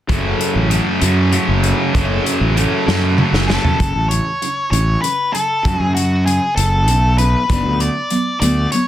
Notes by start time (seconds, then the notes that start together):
0.08 F#1 F#2 C#3 F#3 A3 C#4 A4, kick, closed hi-hat
0.39 F#3 A3 C#4 A4, closed hi-hat
0.56 A1
0.69 F#2 C#3 F#3 A3 C#4 A4, closed hi-hat
1.01 F#2 C#3 F#3 A3 C#4 A4, closed hi-hat
1.32 F#2 C#3 F#3 A3 C#4 A4, closed hi-hat
1.49 F#1
1.63 F#3 A3 C#4 A4, closed hi-hat
1.94 F#1 F#2 C#3 F#3 A3 C#4 A4, kick, closed hi-hat
2.24 F#3 A3 C#4 A4, closed hi-hat
2.41 A1
2.55 F#2 C#3 F#3 A3 C#4 A4, closed hi-hat
2.86 F#2 C#3 F#3 A3 C#4 A4, snare
3.17 F#2 C#3 F#3 A3 C#4 A4, mid tom
3.33 F#1, snare
3.47 F#3 A3 C#4 A4, snare
3.64 floor tom
3.79 F#1 F#2 C#3 F#3, kick, closed hi-hat
3.96 A1
4.09 F#2 C#3 C#5, closed hi-hat
4.42 F#2 C#3, closed hi-hat
4.71 A1 F#2 C#3 C#5, closed hi-hat
5.02 F#2 C#3 B4, closed hi-hat
5.32 F#2 C#3 A4, closed hi-hat
5.64 F#2 C#3 F#3, kick, closed hi-hat
5.78 F#2 G#4
5.95 F#2 C#3 F#4, closed hi-hat
6.26 F#2 C#3 G#4, closed hi-hat
6.56 F#1 F#2 C#3 A4, closed hi-hat
6.87 B1 F#2 C#3, closed hi-hat
7.18 F#2 C#3 B4, closed hi-hat
7.50 F#1 F#3 B3 D4, kick, closed hi-hat
7.64 D2
7.80 F#3 B3 D5, closed hi-hat
8.10 F#3 B3, closed hi-hat
8.40 D2 F#3 B3 D5, closed hi-hat
8.72 F#3 B3 C#5, closed hi-hat